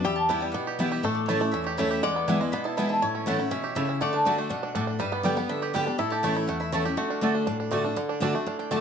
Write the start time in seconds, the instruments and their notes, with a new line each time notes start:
0.04 steel-string acoustic guitar E2, five-string banjo G3, resonator guitar played with a steel bar G4, mandolin E5
0.16 mandolin A5
0.29 steel-string acoustic guitar E3 G3 B3 E4, mandolin B3 E4 B4 G5, five-string banjo E4
0.40 five-string banjo G3, mandolin G5
0.52 steel-string acoustic guitar B2, five-string banjo B3, mandolin F#5
0.67 five-string banjo G4
0.79 steel-string acoustic guitar E3 G3 B3 E4, mandolin B3 E4 B4 G5, five-string banjo E4
0.92 five-string banjo G4
1.03 steel-string acoustic guitar A2, five-string banjo A3, resonator guitar played with a steel bar A4, mandolin E5
1.15 mandolin D5
1.26 steel-string acoustic guitar E3 A3, mandolin A3 E4 C#5 A5, five-string banjo E4
1.30 steel-string acoustic guitar C#4 E4
1.40 five-string banjo A3, steel-string acoustic guitar C#4 E4, mandolin D5
1.52 steel-string acoustic guitar E2, five-string banjo C#4, mandolin E5
1.64 five-string banjo G4, mandolin D5
1.77 steel-string acoustic guitar E3 A3 C#4 E4, mandolin A3 E4 C#5 E5 A5, five-string banjo E4
1.91 five-string banjo G4
2.03 steel-string acoustic guitar E2, five-string banjo G#3, resonator guitar played with a steel bar D5, mandolin F#5
2.16 five-string banjo B3
2.28 steel-string acoustic guitar E3 G#3 B3 E4, mandolin B3 E4 B4 G#5, five-string banjo E4
2.41 five-string banjo G#3, steel-string acoustic guitar B3 E4
2.52 steel-string acoustic guitar B2, five-string banjo B3, mandolin B5
2.64 five-string banjo E4, mandolin A5
2.77 steel-string acoustic guitar E3 G#3 B3 E4, mandolin B3 E4 B4 G#5 B5, five-string banjo E4
2.89 five-string banjo E4, mandolin A5
3.02 steel-string acoustic guitar A2, five-string banjo E4, resonator guitar played with a steel bar C#5
3.15 five-string banjo C#4
3.26 steel-string acoustic guitar E3 A3 C#4 E4, five-string banjo A3, mandolin A3 E4 C#5 F#5 A5
3.39 steel-string acoustic guitar C#4 E4, five-string banjo E4
3.51 steel-string acoustic guitar B2, five-string banjo C#4, mandolin E5
3.64 five-string banjo G4
3.75 steel-string acoustic guitar C#3, mandolin A3 E4 C#5 E5 A5, five-string banjo E4
3.89 five-string banjo C#4
4.01 steel-string acoustic guitar D3, five-string banjo A3, resonator guitar played with a steel bar D5, mandolin F#5
4.13 five-string banjo D4, mandolin A5
4.25 steel-string acoustic guitar D3 A3 D4 F#4, mandolin A3 F#4 D5 A5, five-string banjo D4
4.38 five-string banjo A3, mandolin G5
4.50 steel-string acoustic guitar B2, five-string banjo D4, mandolin F#5
4.63 five-string banjo D4
4.75 steel-string acoustic guitar A2, mandolin A3 F#4 D5 A5, five-string banjo D4
4.87 five-string banjo D4
4.99 steel-string acoustic guitar G2, five-string banjo G3, resonator guitar played with a steel bar B4, mandolin E5
5.12 five-string banjo B3, mandolin D5
5.23 steel-string acoustic guitar D3 G3 B3 G4, five-string banjo G3, mandolin B3 G4 D5 G5
5.37 five-string banjo B3, steel-string acoustic guitar B3 G4, mandolin F#5
5.49 steel-string acoustic guitar D3, five-string banjo D4, mandolin E5
5.62 five-string banjo G4, mandolin D5
5.73 steel-string acoustic guitar D3 G3 B3 G4, five-string banjo G3, mandolin B3 G4 D5 G5
5.86 steel-string acoustic guitar B3 G4, five-string banjo D4
5.98 steel-string acoustic guitar A2, five-string banjo E4, resonator guitar played with a steel bar A4, mandolin E5
6.10 five-string banjo G4, mandolin A5
6.23 steel-string acoustic guitar E3 A3 C#4 E4, mandolin A3 E4 C#5 A5, five-string banjo A3
6.35 five-string banjo E4, mandolin G5
6.47 steel-string acoustic guitar E2, five-string banjo A3, mandolin F#5
6.60 five-string banjo E4, mandolin E5
6.72 steel-string acoustic guitar E3 A3 C#4 E4, mandolin A3 E4 C#5 F#5 A5, five-string banjo A3
6.85 steel-string acoustic guitar C#4 E4, five-string banjo G4, mandolin E5
6.97 steel-string acoustic guitar D3, five-string banjo A3, resonator guitar played with a steel bar F#4, mandolin D5
7.10 five-string banjo D4
7.21 steel-string acoustic guitar D3 A3 D4 F#4, mandolin A3 F#4 D5 A5, five-string banjo A3
7.35 five-string banjo D4
7.47 steel-string acoustic guitar A2, five-string banjo D4
7.60 five-string banjo D4
7.71 steel-string acoustic guitar D3 A3 D4 F#4, five-string banjo A3, mandolin A3 F#4 D5 A5
7.84 five-string banjo D4, steel-string acoustic guitar D4 F#4
7.96 steel-string acoustic guitar D3, five-string banjo D3
8.09 five-string banjo D4
8.20 steel-string acoustic guitar D3 A3 D4 F#4, mandolin A3 F#4 D5 A5, five-string banjo D4
8.33 five-string banjo A3, steel-string acoustic guitar D4 F#4
8.46 steel-string acoustic guitar A2, five-string banjo D4
8.59 five-string banjo D4, mandolin G5
8.71 steel-string acoustic guitar D3 A3 D4 F#4, mandolin A3 F#4 D5 E5 A5, five-string banjo A3